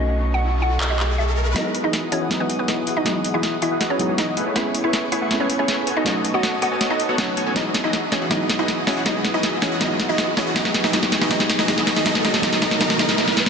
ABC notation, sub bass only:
X:1
M:4/4
L:1/16
Q:1/4=160
K:E
V:1 name="Sub bass" clef=bass
B,,,16 | E,,,12 z2 G,,,2- | G,,,2 E,,,8 E,,,4 z2 | z2 A,,,8 E,,,4 B,,,2- |
B,,,2 B,,,8 z4 z F,,, | E,,,12 z2 G,,,2- | G,,,2 z12 z2 | z16 |
z16 |]